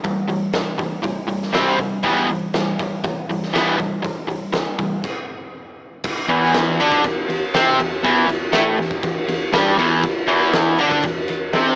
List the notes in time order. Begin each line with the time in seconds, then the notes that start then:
0.04 E3 G3, kick, open hi-hat
0.28 E3 G3, open hi-hat
0.53 E3 G3, snare, open hi-hat
0.79 E3 G3, kick, open hi-hat
1.03 E3 G3, kick, open hi-hat
1.28 E3 G3, open hi-hat
1.42 snare
1.53 C3 G3 C4, snare, open hi-hat
1.79 C3 G3, kick, open hi-hat
2.03 E3 G3 B3, kick, open hi-hat
2.29 E3 G3, open hi-hat
2.54 E3 G3, snare, open hi-hat
2.79 E3 G3, kick, snare, open hi-hat
3.04 E3 G3, kick, open hi-hat
3.29 E3 G3, open hi-hat
3.43 snare
3.53 E3 G3 B3, snare, open hi-hat
3.78 E3 G3, kick, open hi-hat
4.02 E3 G3, kick, open hi-hat
4.27 E3 G3, open hi-hat
4.52 E3 G3, snare, open hi-hat
4.79 E3 G3, kick, open hi-hat
5.04 kick, crash
6.04 kick, crash
6.28 E2 E3, ride
6.54 snare, ride
6.79 D3 D4, ride
6.92 kick
7.04 E2, kick, ride
7.29 E2, ride
7.54 C3 C4, snare, ride
7.79 E2, ride
8.03 E2 E3, kick, ride
8.28 E2, ride
8.52 A2 A3, snare, ride
8.78 E2, ride
8.91 kick
9.03 E2, kick, ride
9.28 E2, ride
9.52 G2 G3, snare, ride
9.78 E2 E3, ride
10.03 kick, ride
10.27 E2 E3, ride
10.53 snare, ride
10.78 D3 D4, ride
10.91 kick
11.02 E2, kick, ride
11.28 E2, ride
11.53 C3 C4, snare, ride